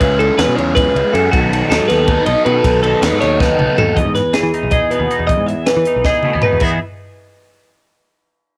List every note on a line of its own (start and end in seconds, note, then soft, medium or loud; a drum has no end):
0.00 0.29 C#2 loud
0.00 0.38 C#3 loud
0.00 0.37 G#3 loud
0.00 0.20 C#4 loud
0.00 0.18 E4 loud
0.00 0.18 G#4 loud
0.00 0.19 B4 medium
0.00 kick loud
0.00 ride loud
0.19 0.38 C#4 medium
0.19 0.37 E4 medium
0.19 0.38 G#4 medium
0.19 0.38 A4 medium
0.19 ride medium
0.38 0.45 E2 loud
0.38 0.57 G#3 medium
0.38 0.56 C#4 medium
0.38 0.56 E4 medium
0.38 0.55 G#4 medium
0.38 0.56 B4 medium
0.38 snare loud
0.38 ride loud
0.48 0.55 B2 medium
0.56 0.86 E2 loud
0.56 0.95 C#3 medium
0.56 0.75 G#3 medium
0.56 0.76 C#4 medium
0.56 0.76 E4 medium
0.56 0.76 G#4 medium
0.56 0.75 C#5 medium
0.56 ride medium
0.75 1.12 G#3 medium
0.75 0.96 C#4 medium
0.75 0.94 E4 medium
0.75 0.94 G#4 medium
0.75 1.13 B4 medium
0.75 kick loud
0.75 ride loud
0.95 1.02 C#2 medium
0.95 1.13 C#4 medium
0.95 1.12 E4 medium
0.95 1.13 G#4 medium
0.95 ride medium
1.12 1.28 F#2 loud
1.12 1.31 C#3 medium
1.12 1.31 G#3 loud
1.12 1.31 C#4 loud
1.12 1.31 E4 medium
1.12 1.32 G#4 loud
1.12 1.31 A4 medium
1.12 ride medium
1.31 1.62 B1 loud
1.31 1.75 B2 loud
1.31 1.70 D#3 loud
1.31 1.51 F#3 loud
1.31 1.51 B3 loud
1.31 1.50 D#4 loud
1.31 1.69 F#4 loud
1.31 1.50 A4 loud
1.31 kick loud
1.31 ride loud
1.50 1.70 F#3 medium
1.50 1.70 B3 medium
1.50 1.71 D#4 medium
1.50 1.72 A4 medium
1.50 ride medium
1.70 1.78 D#2 loud
1.70 1.89 F#3 medium
1.70 1.90 B3 medium
1.70 1.89 D#4 medium
1.70 1.89 A4 medium
1.70 1.88 A4 medium
1.70 snare loud
1.70 ride loud
1.80 1.87 G#2 medium
1.88 2.18 D#2 loud
1.88 2.28 B2 medium
1.88 2.28 D#3 medium
1.88 2.08 F#3 medium
1.88 2.09 B3 medium
1.88 2.10 D#4 medium
1.88 2.09 A4 medium
1.88 2.26 B4 medium
1.88 snare soft
1.88 ride medium
2.08 2.29 F#3 medium
2.08 2.29 B3 medium
2.08 2.28 D#4 medium
2.08 2.26 A4 medium
2.08 kick loud
2.08 ride loud
2.26 2.34 B1 medium
2.26 2.47 F#3 medium
2.26 2.48 B3 medium
2.26 2.48 D#4 medium
2.26 2.47 A4 medium
2.26 2.45 D#5 medium
2.26 ride medium
2.45 2.60 B2 loud
2.45 2.64 B2 medium
2.45 2.64 D#3 loud
2.45 2.64 F#3 loud
2.45 2.65 B3 loud
2.45 2.65 D#4 loud
2.45 2.65 A4 loud
2.45 2.82 B4 medium
2.45 ride medium
2.64 2.93 B1 loud
2.64 3.03 B2 loud
2.64 3.03 D#3 medium
2.64 2.83 F#3 loud
2.64 2.83 B3 loud
2.64 2.82 D#4 loud
2.64 2.81 A4 loud
2.64 kick loud
2.64 ride loud
2.82 3.01 F#3 medium
2.82 3.02 B3 medium
2.82 3.02 D#4 medium
2.82 3.02 A4 medium
2.82 ride medium
3.02 3.09 D#2 loud
3.02 3.20 F#3 medium
3.02 3.19 B3 medium
3.02 3.19 D#4 medium
3.02 3.18 A4 medium
3.02 3.20 B4 medium
3.02 snare loud
3.02 ride loud
3.13 3.19 G#2 medium
3.19 3.51 D#2 loud
3.19 3.59 B2 medium
3.19 3.58 D#3 medium
3.19 3.38 F#3 medium
3.19 3.38 B3 medium
3.19 3.39 D#4 medium
3.19 3.40 A4 medium
3.19 3.40 C#5 medium
3.19 snare soft
3.19 ride medium
3.39 3.58 F#3 medium
3.39 3.58 B3 medium
3.39 3.58 D#4 medium
3.39 3.57 A4 medium
3.39 3.78 B4 medium
3.39 kick loud
3.39 snare medium
3.58 3.67 B1 medium
3.58 3.75 F#3 medium
3.58 3.76 B3 medium
3.58 3.77 D#4 medium
3.58 3.77 A4 medium
3.58 mid tom medium
3.76 3.93 D#2 loud
3.76 3.94 B2 medium
3.76 3.95 D#3 loud
3.76 3.95 F#3 loud
3.76 3.95 B3 loud
3.76 3.95 D#4 loud
3.76 3.95 A4 loud
3.76 3.97 A4 medium
3.76 floor tom loud
3.96 5.29 E2 medium
3.96 4.06 E2 medium
3.96 4.14 D#5 medium
3.96 kick loud
3.96 closed hi-hat medium
4.06 4.20 G#2 medium
4.15 4.34 B4 medium
4.15 snare soft
4.15 closed hi-hat medium
4.33 5.66 E3 medium
4.33 4.72 G#4 medium
4.33 snare loud
4.33 closed hi-hat medium
4.43 4.50 E3 medium
4.54 5.10 D#4 medium
4.54 closed hi-hat medium
4.63 4.77 B1 medium
4.71 6.06 G#4 medium
4.71 4.91 D#5 medium
4.71 kick loud
4.71 closed hi-hat medium
4.91 5.28 B2 medium
4.91 6.24 B3 medium
4.91 5.27 B4 medium
4.91 closed hi-hat medium
5.00 5.07 D#2 medium
5.11 5.32 D#4 medium
5.11 closed hi-hat medium
5.19 5.26 E2 loud
5.27 6.58 E2 medium
5.27 5.39 E2 medium
5.27 5.47 D#5 loud
5.27 kick loud
5.27 closed hi-hat loud
5.39 5.53 G#2 medium
5.47 5.66 E5 medium
5.47 closed hi-hat medium
5.66 6.60 E3 medium
5.66 6.04 B4 medium
5.66 snare loud
5.66 closed hi-hat medium
5.77 5.83 E3 medium
5.85 6.43 D#4 medium
5.85 closed hi-hat medium
5.96 6.10 B1 medium
6.04 6.59 G#4 medium
6.04 6.42 D#5 medium
6.04 kick loud
6.04 snare medium
6.23 6.61 B2 medium
6.23 6.33 A3 medium
6.23 mid tom medium
6.33 6.41 D#2 medium
6.33 6.61 B3 medium
6.42 6.60 D#4 medium
6.42 6.61 B4 medium
6.42 floor tom loud
6.52 6.59 E2 loud
6.60 6.77 E2 medium
6.60 6.79 E2 medium
6.60 6.78 E3 medium
6.60 6.78 B3 medium
6.60 6.78 D#4 medium
6.60 6.79 E4 medium
6.60 kick loud
6.60 crash medium
6.64 6.79 G#4 medium